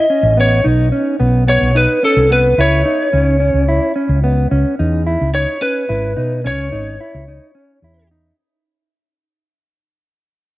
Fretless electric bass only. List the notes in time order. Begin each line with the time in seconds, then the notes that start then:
0.23 A1
0.65 B1
1.20 B1
1.61 B1
2.16 C2
2.58 C#2
3.13 C#2
3.54 C#2
4.09 C#2
4.51 C#2
4.79 E2
5.21 C#2
5.89 G#1
6.17 B2
6.45 C#2
6.73 G#1
7.14 C#2
7.82 E2